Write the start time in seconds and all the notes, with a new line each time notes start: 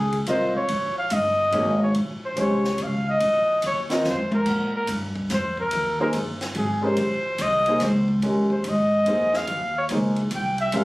Already playing: C#2 G#4
0.12 ride
0.26 C2 C4 F4 A#4 D#5, hi-hat pedal, ride
0.31 C5
0.56 C#5, muted upright bass stroke
0.68 A#1, ride
0.99 F5
1.10 G1 D#5, hi-hat pedal, ride
1.52 G#1 A#3 D#4 G#4 C#5, ride
1.83 C#5
1.94 A#1, ride
2.25 C5
2.36 C2 G#3 C#4 G4 C5, hi-hat pedal, ride
2.41 C#5
2.65 snare
2.78 C#2, hi-hat pedal, ride
2.83 F5
3.10 D#5
3.20 A#1, ride
3.62 D#2, hi-hat pedal, ride
3.67 C#5
3.90 C4 F4 A#4 D#5, snare, ride
4.04 F2, snare
4.08 C5
4.18 high tom
4.32 A#4, high tom
4.46 A#2, kick, crash
4.76 A#4
4.87 G2, hi-hat pedal, ride
5.16 kick
5.30 F2, snare, hi-hat pedal, ride
5.34 C5
5.57 A#4, kick
5.71 D#2, ride
6.00 A#3 D#4 G#4 A#4 C5
6.13 G1, hi-hat pedal, ride
6.41 snare, ride
6.55 G#1 G#4, ride
6.82 G#3 C#4 G4 A#4 C5
6.97 A#1, ride
7.38 C2 D#5, hi-hat pedal, ride
7.66 A#3 D#4 G#4 C5, ride
7.80 C#2 C5, snare, hi-hat pedal, ride
8.08 kick
8.22 D#2 G#3 C#4 G4 A#4, ride
8.50 C5, kick
8.64 G#2, hi-hat pedal, ride
8.69 D#5
9.06 F2 A#3 D#4 G#4 C5, ride
9.34 F5, snare
9.47 D#2, ride
9.78 C#5
9.89 C#2 A#3 D#4 G#4 C5, hi-hat pedal, ride
10.16 ride
10.31 C2, hi-hat pedal, ride
10.35 G5
10.58 E5, ride
10.72 A#1 G#3 C#4 G4 A#4, ride
10.76 F5